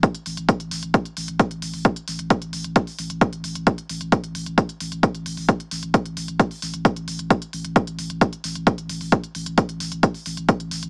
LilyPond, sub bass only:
\new Staff \with { instrumentName = "Sub bass" } { \clef bass \time 4/4 \key c \major \tempo 4 = 132 r8 a,,16 a,,16 r16 a,,16 a,,16 a,,16 r8 a,,16 a,,16 r16 a,,16 a,,16 a,,16 | r8 a,,16 a,,16 r16 a,,16 a,,16 a,,16 r8 a,,16 a,,16 r16 a,,16 a,,16 a,,16 | r8 a,,16 a,,16 r16 a,,16 a,,16 a,,16 r8 a,,16 a,,16 r16 a,,16 a,,16 a,,16 | r8 a,,16 a,,16 r16 a,,16 a,,16 a,,16 r8 a,,16 a,,16 r16 a,,16 a,,16 a,,16 |
r8 a,,16 a,,16 r16 a,,16 a,,16 a,,16 r8 a,,16 a,,16 r16 a,,16 a,,16 a,,16 | r8 a,,16 a,,16 r16 a,,16 a,,16 a,,16 r8 a,,16 a,,16 r16 a,,16 a,,16 a,,16 | }